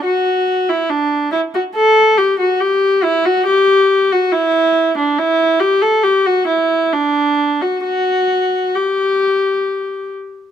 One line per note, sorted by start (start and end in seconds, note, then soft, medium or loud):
0.05 0.66 F#4 medium
0.69 0.89 E4 medium
0.90 1.32 D4 medium
1.32 1.40 E4 medium
1.54 1.62 F#4 medium
1.75 2.17 A4 medium
2.17 2.39 G4 medium
2.40 2.60 F#4 medium
2.60 3.03 G4 medium
3.03 3.25 E4 medium
3.25 3.46 F#4 medium
3.46 4.09 G4 medium
4.12 4.33 F#4 medium
4.32 4.96 E4 medium
4.98 5.18 D4 medium
5.18 5.61 E4 medium
5.60 5.82 G4 medium
5.82 6.04 A4 medium
6.03 6.25 G4 medium
6.26 6.48 F#4 medium
6.47 6.91 E4 medium
6.93 7.60 D4 medium
7.61 7.83 F#4 medium
7.84 8.73 F#4 medium
8.75 10.11 G4 medium